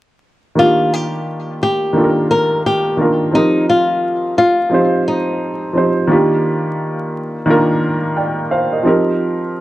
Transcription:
0.55 upright piano D#3 A#3 D4 F4, nylon-string guitar F4
0.60 upright piano G4
0.94 nylon-string guitar G4
1.63 nylon-string guitar G4
1.93 upright piano D#3 A#3 D4 F4
1.97 upright piano A4
2.04 upright piano A#4
2.31 nylon-string guitar A#4
2.66 nylon-string guitar G4
2.97 upright piano D#3 A#3 D4 F4
3.01 upright piano A#4
3.31 upright piano F3 C4 D#4 G4, nylon-string guitar D#4
3.35 upright piano A#4
3.69 nylon-string guitar F4
4.38 nylon-string guitar F4
4.69 upright piano F3 C4 D#4 G4
4.74 upright piano C5
5.08 nylon-string guitar D#4
5.73 upright piano F3 C4 D#4 G4
5.77 upright piano C5
6.07 upright piano D#3 A#3 D4 F4
6.12 upright piano G4
7.46 upright piano D#3 A#3 D4 F4
7.50 upright piano A#4
8.17 upright piano D5 G5
8.51 upright piano C5 F5
8.72 upright piano A#4 D#5
8.83 upright piano F3 C4 D#4 G4
8.88 upright piano A#4

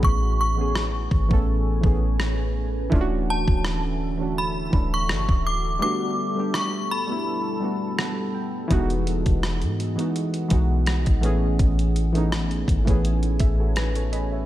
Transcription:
Already playing: synth keys E3 A3 B3 C#4 G#4, ambient pad A3 C#4 B4 G#5
0.03 808-style bass A1, synth bell C#6, kick
0.41 synth bell C#6
0.56 synth keys E3 A3 B3 C#4
0.61 synth keys G#4
0.75 cross-stick
1.11 808-style bass G#1, kick
1.28 808-style bass A1, synth keys E3 A3 B3 C#4, kick
1.33 synth keys A4
1.81 808-style bass A1, synth keys E3 A3 B3 C#4, kick
1.86 synth keys G#4
2.20 cross-stick
2.90 808-style bass D1, ambient pad D3 F#4 A4 E5, synth keys E3 A3 C#4 D4, kick
2.94 synth keys F4
3.01 synth keys F#4
3.30 synth bell A5
3.48 808-style bass D1, kick
3.65 cross-stick
4.18 synth keys E3 A3 C#4 D4
4.22 synth keys F#4
4.38 synth bell B5
4.70 808-style bass D1, synth keys E3 A3 C#4 D4, kick
4.75 synth keys A4
4.94 synth bell C#6
5.09 808-style bass F#1, cross-stick
5.29 808-style bass D1, kick
5.47 synth bell D6
5.79 synth keys G3 A3 B3 D4, ambient pad G3 B3 A4 A5, synth bell D6
5.84 synth keys F#4
6.35 synth keys G3 A3 B3 D4
6.40 synth keys G4
6.54 synth bell C#6, cross-stick
6.91 synth bell B5
7.07 synth keys G3 A3 B3 D4
7.12 synth keys E4
7.60 synth keys G3 A3 B3 D4
7.65 synth keys F#4
7.98 synth keys F#5, cross-stick
8.34 synth keys G5
8.68 808-style bass E1, synth keys E3 G3 B3 D#4, ambient pad E3 G#4 D#5 F#5, kick, closed hi-hat
8.73 synth keys G#3 F#4
8.90 closed hi-hat
9.07 closed hi-hat
9.26 808-style bass E1, kick, closed hi-hat
9.43 cross-stick, closed hi-hat
9.62 808-style bass G#2, closed hi-hat
9.80 closed hi-hat
9.96 synth keys E3 G#3 B3 D#4, closed hi-hat
10.00 synth keys F#4
10.16 closed hi-hat
10.34 closed hi-hat
10.48 808-style bass B1, synth keys E3 G#3 B3 D#4, kick, closed hi-hat
10.53 synth keys F#4
10.86 cross-stick, closed hi-hat
11.06 808-style bass A1, kick, closed hi-hat
11.21 synth keys E3 A3 B3 C#4, ambient pad A3 C#4 B4 G#5, closed hi-hat
11.26 synth keys G#4
11.59 808-style bass A1, kick, closed hi-hat
11.79 closed hi-hat
11.96 closed hi-hat
12.13 synth keys E3 A3 B3 C#4, closed hi-hat
12.18 synth keys D#4
12.32 cross-stick, closed hi-hat
12.51 closed hi-hat
12.68 808-style bass G#1, kick, closed hi-hat
12.85 808-style bass A1, synth keys E3 A3 B3 C#4, kick, closed hi-hat
12.90 synth keys G#4
13.05 closed hi-hat
13.23 closed hi-hat
13.39 808-style bass A1, synth keys E5, kick, closed hi-hat
13.60 synth keys F#4 A4
13.76 synth keys G#4 B4 G#5, cross-stick, closed hi-hat
13.96 synth keys A4 C#5, closed hi-hat
14.12 synth keys B4 D#5 B5, closed hi-hat
14.32 synth keys C#5 E5

